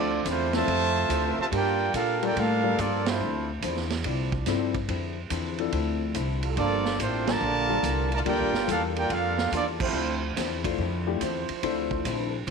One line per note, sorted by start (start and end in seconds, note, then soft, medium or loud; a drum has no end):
0.00 0.24 D2 loud
0.00 0.13 D3 medium
0.00 0.13 F3 medium
0.00 0.23 F3 medium
0.00 0.24 A3 medium
0.00 0.13 C4 medium
0.00 0.23 C4 medium
0.00 0.25 C4 medium
0.00 0.23 D4 medium
0.00 0.24 D4 medium
0.00 0.14 E4 medium
0.00 0.25 F4 medium
0.00 0.23 A4 medium
0.00 0.25 A4 medium
0.00 0.25 D5 loud
0.00 0.23 E5 medium
0.25 0.66 E2 loud
0.25 0.55 D3 medium
0.25 0.55 F3 medium
0.25 0.53 F3 medium
0.25 0.52 A3 medium
0.25 0.55 C4 medium
0.25 0.54 C4 medium
0.25 0.55 E4 medium
0.25 0.55 F4 medium
0.25 kick soft
0.25 hi-hat pedal medium
0.25 ride medium
0.29 0.56 A3 medium
0.29 0.55 E4 medium
0.29 0.56 C5 medium
0.53 1.34 C3 loud
0.53 1.34 F3 loud
0.53 0.67 F3 medium
0.53 1.34 A3 loud
0.53 0.67 C4 medium
0.53 0.67 D4 medium
0.53 0.67 E4 medium
0.53 1.36 F4 loud
0.53 0.67 A4 medium
0.53 1.36 E5 loud
0.53 1.36 A5 loud
0.53 snare medium
0.53 ride medium
0.57 1.36 C5 loud
0.67 1.09 F2 medium
0.67 0.97 D3 medium
0.67 0.97 F3 medium
0.67 0.97 C4 medium
0.67 0.98 E4 medium
0.67 kick soft
0.67 ride medium
1.08 1.36 D2 loud
1.08 1.39 D3 medium
1.08 1.39 F3 medium
1.08 1.52 F3 loud
1.08 1.39 C4 medium
1.08 1.52 D4 loud
1.08 1.39 E4 medium
1.08 1.52 E4 loud
1.08 1.53 C5 loud
1.08 kick soft
1.08 hi-hat pedal medium
1.08 ride medium
1.37 1.44 C3 medium
1.37 1.44 F3 medium
1.37 1.43 A3 medium
1.37 1.46 C5 medium
1.37 1.46 A5 loud
1.37 muted upright bass stroke soft
1.41 1.47 F4 medium
1.41 1.47 E5 medium
1.51 1.93 G2 medium
1.51 1.81 G3 soft
1.51 1.91 A#3 loud
1.51 1.81 A#3 medium
1.51 1.91 D4 loud
1.51 1.82 F4 medium
1.51 1.91 G4 loud
1.51 1.82 A4 medium
1.51 kick soft
1.51 ride medium
1.55 1.93 F4 medium
1.55 1.93 A#4 medium
1.55 1.93 D5 medium
1.55 1.93 G5 loud
1.94 2.35 A#2 medium
1.94 2.24 G3 medium
1.94 2.20 A#3 medium
1.94 2.24 A#3 medium
1.94 2.20 D4 medium
1.94 2.21 D4 medium
1.94 2.20 F4 medium
1.94 2.24 F4 medium
1.94 2.24 A4 medium
1.94 2.21 A4 medium
1.94 2.22 A#4 medium
1.94 2.21 F5 medium
1.94 kick soft
1.94 hi-hat pedal medium
1.94 ride medium
2.22 2.62 G3 medium
2.22 2.36 A#3 medium
2.22 2.62 A#3 medium
2.22 2.35 D4 medium
2.22 2.62 D4 medium
2.22 2.62 F4 medium
2.22 2.38 F4 medium
2.22 2.36 G4 medium
2.22 2.62 A4 medium
2.22 2.38 A#4 medium
2.22 2.38 D5 medium
2.22 2.38 G5 loud
2.22 ride medium
2.35 2.77 A2 loud
2.35 2.78 G3 medium
2.35 2.66 G3 medium
2.35 2.66 A#3 medium
2.35 2.77 D4 medium
2.35 2.78 F4 medium
2.35 2.67 F4 medium
2.35 2.67 A4 medium
2.35 2.80 A#4 medium
2.35 2.80 F5 loud
2.35 kick soft
2.35 ride medium
2.40 2.80 D4 medium
2.40 2.79 A4 medium
2.63 2.77 G3 medium
2.63 2.77 A#3 medium
2.63 2.77 D4 medium
2.63 2.77 F4 medium
2.63 2.77 A4 medium
2.78 3.19 G2 loud
2.78 3.05 F3 medium
2.78 3.08 G3 medium
2.78 3.22 G3 loud
2.78 3.06 A#3 medium
2.78 3.08 A#3 medium
2.78 3.21 A#3 medium
2.78 3.08 A#3 medium
2.78 3.06 D4 medium
2.78 3.08 F4 medium
2.78 3.22 F4 medium
2.78 3.08 F4 medium
2.78 3.09 A4 medium
2.78 3.21 A4 loud
2.78 3.08 A4 medium
2.78 3.08 D5 loud
2.78 kick soft
2.78 hi-hat pedal medium
2.78 ride medium
3.06 3.49 F3 medium
3.06 3.48 A3 medium
3.06 3.50 A3 medium
3.06 3.48 C4 medium
3.06 3.50 E4 medium
3.06 3.50 F4 medium
3.06 3.50 C5 medium
3.06 snare loud
3.06 ride medium
3.20 3.61 D2 loud
3.20 3.50 D3 medium
3.20 3.50 F3 medium
3.20 3.51 C4 medium
3.20 3.51 E4 medium
3.62 4.04 E2 loud
3.62 3.92 D3 medium
3.62 3.92 F3 medium
3.62 3.82 F3 medium
3.62 3.93 C4 medium
3.62 3.82 D4 medium
3.62 3.82 E4 medium
3.62 3.93 E4 medium
3.62 3.82 C5 loud
3.62 kick soft
3.62 hi-hat pedal medium
3.62 ride medium
3.77 snare soft
3.90 snare medium
3.90 ride medium
4.04 4.45 C2 loud
4.04 4.34 D3 medium
4.04 4.34 F3 medium
4.04 4.70 F3 medium
4.04 4.35 C4 medium
4.04 4.70 D4 medium
4.04 4.35 E4 medium
4.04 4.70 E4 medium
4.04 4.70 D5 loud
4.04 kick soft
4.04 ride medium
4.32 kick medium
4.46 4.88 G2 loud
4.46 4.76 D3 medium
4.46 4.76 F3 medium
4.46 4.72 F3 medium
4.46 4.76 C4 medium
4.46 4.72 C4 medium
4.46 4.72 D4 medium
4.46 4.73 E4 medium
4.46 4.77 E4 medium
4.46 4.73 A4 medium
4.46 kick soft
4.46 snare soft
4.46 hi-hat pedal medium
4.46 ride medium
4.74 kick medium
4.74 ride medium
4.88 5.30 F2 medium
4.88 5.18 D3 medium
4.88 5.18 F3 medium
4.88 5.19 C4 medium
4.88 5.19 E4 medium
4.88 kick soft
4.88 ride medium
5.30 5.72 E2 medium
5.30 5.60 D3 medium
5.30 5.60 F3 medium
5.30 5.60 C4 medium
5.30 5.61 E4 medium
5.30 kick soft
5.30 hi-hat pedal medium
5.30 ride medium
5.58 6.13 F3 medium
5.58 6.13 C4 medium
5.58 6.13 D4 medium
5.58 6.13 E4 medium
5.58 6.13 A4 medium
5.58 ride soft
5.72 6.14 D2 medium
5.72 6.02 D3 medium
5.72 6.02 F3 medium
5.72 6.03 C4 medium
5.72 6.03 E4 medium
5.72 kick soft
5.72 ride medium
6.14 6.56 C2 medium
6.14 6.44 D3 medium
6.14 6.44 F3 medium
6.14 6.45 C4 medium
6.14 6.45 E4 medium
6.14 kick soft
6.14 hi-hat pedal medium
6.14 ride medium
6.43 6.97 G3 loud
6.43 6.97 A#3 loud
6.43 6.97 F4 loud
6.43 6.97 A4 loud
6.43 ride medium
6.56 6.98 G1 loud
6.56 6.97 F3 medium
6.56 6.86 G3 soft
6.56 6.87 A#3 soft
6.56 6.97 A#3 loud
6.56 6.97 A#3 medium
6.56 6.97 D4 medium
6.56 6.87 F4 medium
6.56 6.97 F4 medium
6.56 6.87 A4 medium
6.56 6.98 A4 medium
6.56 6.97 D5 loud
6.56 kick soft
6.56 ride medium
6.85 snare medium
6.99 7.40 A1 medium
6.99 7.29 G3 medium
6.99 7.29 A3 medium
6.99 7.29 A#3 medium
6.99 7.28 C4 medium
6.99 7.29 D4 medium
6.99 7.29 F4 medium
6.99 7.29 A4 medium
6.99 7.28 C5 medium
6.99 kick soft
6.99 hi-hat pedal medium
6.99 ride medium
7.27 8.12 D3 loud
7.27 8.12 F3 loud
7.27 7.40 G3 medium
7.27 7.40 A#3 medium
7.27 8.12 A#3 loud
7.27 7.40 D4 medium
7.27 7.40 F4 medium
7.27 8.13 F4 loud
7.27 7.40 A4 medium
7.27 8.13 A#4 loud
7.27 8.13 D5 loud
7.27 8.13 A5 loud
7.27 snare loud
7.27 ride medium
7.40 7.82 A#1 loud
7.40 7.71 G3 medium
7.40 7.71 A#3 medium
7.40 7.71 F4 medium
7.40 7.72 A4 medium
7.69 7.82 G3 medium
7.69 7.79 G3 loud
7.69 7.82 A#3 medium
7.69 7.79 A#3 medium
7.69 7.82 D4 medium
7.69 7.79 F4 medium
7.69 7.82 F4 medium
7.69 7.82 A4 medium
7.69 7.79 A4 loud
7.83 8.24 C2 loud
7.83 8.13 G3 medium
7.83 8.13 A#3 medium
7.83 8.13 F4 medium
7.83 8.14 A4 medium
7.83 kick soft
7.83 hi-hat pedal medium
7.83 ride medium
8.12 8.20 D3 medium
8.12 8.20 F3 medium
8.12 8.20 A3 medium
8.12 8.20 F4 medium
8.12 8.20 A#4 medium
8.12 8.20 D5 medium
8.12 8.20 A5 loud
8.12 ride medium
8.25 8.39 D2 medium
8.25 8.55 G3 medium
8.25 8.51 G3 medium
8.25 8.51 A#3 medium
8.25 8.56 A#3 medium
8.25 8.66 A#3 loud
8.25 8.51 D4 medium
8.25 8.66 D4 medium
8.25 8.51 F4 medium
8.25 8.56 F4 medium
8.25 8.67 F4 medium
8.25 8.65 G4 loud
8.25 8.51 A4 medium
8.25 8.56 A4 medium
8.25 8.67 A#4 medium
8.25 8.66 D5 medium
8.25 8.67 G5 loud
8.25 kick soft
8.25 ride medium
8.39 8.51 A#1 medium
8.52 8.66 G1 medium
8.52 snare medium
8.67 9.09 E2 loud
8.67 9.32 G3 medium
8.67 8.97 G3 medium
8.67 9.32 A#3 medium
8.67 8.98 A#3 medium
8.67 8.82 A#3 medium
8.67 9.32 D4 medium
8.67 8.81 D4 medium
8.67 9.32 F4 medium
8.67 8.98 F4 medium
8.67 8.81 F4 medium
8.67 9.32 A4 medium
8.67 8.98 A4 medium
8.67 kick soft
8.67 hi-hat pedal medium
8.67 ride medium
8.71 8.83 D4 medium
8.71 8.83 A4 medium
8.71 8.83 A#4 medium
8.71 8.84 F5 medium
8.95 9.09 A#3 medium
8.95 9.09 D4 medium
8.95 9.11 F4 medium
8.95 9.09 G4 medium
8.95 9.11 A#4 medium
8.95 9.11 D5 medium
8.95 9.11 G5 loud
8.95 ride medium
9.10 9.51 F2 loud
9.10 9.40 G3 medium
9.10 9.52 A#3 medium
9.10 9.40 A#3 medium
9.10 9.52 D4 medium
9.10 9.54 D4 medium
9.10 9.52 F4 medium
9.10 9.40 F4 medium
9.10 9.40 A4 medium
9.10 9.53 A4 medium
9.10 9.54 A#4 medium
9.10 9.54 F5 loud
9.10 kick soft
9.10 ride medium
9.38 snare medium
9.52 9.92 E2 medium
9.52 9.66 F3 medium
9.52 9.82 G3 medium
9.52 9.82 A#3 medium
9.52 9.66 A#3 medium
9.52 9.67 A#3 medium
9.52 9.66 D4 medium
9.52 9.82 F4 medium
9.52 9.67 F4 medium
9.52 9.83 A4 medium
9.52 9.67 A4 medium
9.52 9.67 D5 loud
9.52 kick soft
9.52 hi-hat pedal medium
9.52 ride medium
9.80 10.19 F3 medium
9.80 10.35 F3 loud
9.80 10.20 A3 medium
9.80 10.21 A3 medium
9.80 10.20 C4 medium
9.80 10.34 D4 loud
9.80 10.21 E4 medium
9.80 10.21 F4 medium
9.80 10.34 G4 loud
9.80 10.34 C5 loud
9.80 10.21 C5 medium
9.80 kick loud
9.80 crash loud
9.93 10.35 D2 loud
9.93 10.24 D3 soft
9.93 10.24 F3 medium
9.93 10.24 C4 medium
9.93 10.25 E4 medium
10.37 10.78 E2 loud
10.37 10.66 D3 medium
10.37 10.66 F3 medium
10.37 10.67 C4 medium
10.37 10.67 E4 medium
10.37 kick soft
10.37 snare soft
10.37 hi-hat pedal medium
10.37 ride medium
10.64 10.77 A3 medium
10.64 10.78 D4 medium
10.64 10.78 E4 medium
10.64 10.78 F4 medium
10.64 10.78 C5 medium
10.64 kick medium
10.64 ride medium
10.78 11.20 F2 loud
10.78 11.09 D3 medium
10.78 11.09 F3 medium
10.78 11.09 C4 medium
10.78 11.09 E4 medium
10.78 kick soft
11.06 11.20 A3 medium
11.06 11.19 D4 medium
11.06 11.20 E4 medium
11.06 11.20 F4 medium
11.06 11.20 G4 medium
11.21 11.47 E2 loud
11.21 11.50 D3 medium
11.21 11.85 F3 loud
11.21 11.51 F3 medium
11.21 11.51 C4 medium
11.21 11.86 D4 medium
11.21 11.86 E4 loud
11.21 11.51 E4 medium
11.21 11.85 C5 loud
11.21 kick soft
11.21 hi-hat pedal medium
11.21 ride medium
11.49 muted upright bass stroke soft
11.49 ride medium
11.63 12.04 D2 medium
11.63 11.93 D3 medium
11.63 11.93 F3 medium
11.63 12.28 A3 medium
11.63 11.93 C4 medium
11.63 12.28 D4 medium
11.63 12.28 E4 medium
11.63 11.94 E4 medium
11.63 12.28 F4 medium
11.63 12.28 C5 loud
11.63 kick soft
11.63 ride medium
11.90 12.45 F3 loud
11.90 12.45 D4 medium
11.90 12.44 C5 loud
11.90 kick medium
12.05 12.46 A#1 medium
12.05 12.35 D3 medium
12.05 12.35 F3 medium
12.05 12.35 C4 medium
12.05 12.36 E4 medium
12.05 kick soft
12.05 hi-hat pedal medium
12.05 ride medium
12.47 12.50 C2 loud
12.47 12.50 F3 medium
12.47 12.50 D4 medium
12.47 12.50 E4 medium
12.47 kick soft